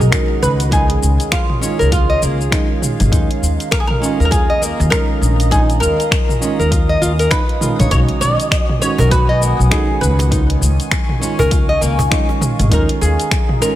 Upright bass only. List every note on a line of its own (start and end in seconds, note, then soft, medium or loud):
0.42 0.97 C#2 medium
1.03 1.16 C#2 medium
1.80 2.17 C#2 medium
2.22 2.46 C#2 medium
3.00 3.09 G#1 medium
3.12 3.25 D#2 loud
3.42 3.55 D#2 medium
4.20 4.73 D#2 medium
4.80 4.89 D#2 loud
5.21 5.77 A#1 loud
5.82 5.95 D#2 medium
6.59 6.97 D#2 medium
7.01 7.26 D#2 medium
7.79 7.88 A#1 medium
7.91 8.05 B1 loud
8.21 8.35 B1 medium
8.99 9.52 B1 medium
9.59 9.68 B1 medium
10.02 10.57 C#2 loud
10.61 10.75 C#2 medium
11.39 11.77 C#2 medium
11.82 12.06 C#2 medium
12.59 12.68 G#1 loud
12.72 12.85 D#2 medium
13.01 13.15 D#2 medium